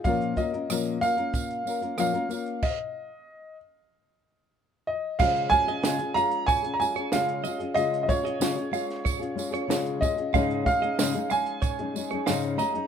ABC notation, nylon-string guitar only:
X:1
M:4/4
L:1/16
Q:1/4=93
K:Db
V:1 name="Nylon-string guitar"
[B,,F,B,DFB]2 [B,DFB] [B,DFB] [B,,F,B,DFB]2 [B,DFB] [B,DFB]3 [B,DFB] [B,DFB] [B,,F,B,DFB] [B,DFB] [B,DFB]2 | z16 | [D,A,DFA]2 [A,DFA] [DFA] [D,A,DFA] [DFA] [A,DFA]3 [DFA] [A,DFA] [DFA] [D,A,DFA]2 [A,DFA] [DFA] | [D,A,DFA]2 [A,DFA] [DFA] [D,A,DFA] [DFA] [A,DFA]3 [DFA] [A,DFA] [DFA] [D,A,DFA]2 [A,DFA] [DFA] |
[A,,D,A,DEA]2 [A,DEA] [A,DEA] [A,,D,A,DEA] [A,DEA] [A,DEA]3 [A,DEA] [A,DEA] [A,DEA] [A,,D,A,DEA]2 [A,DEA] [A,DEA] |]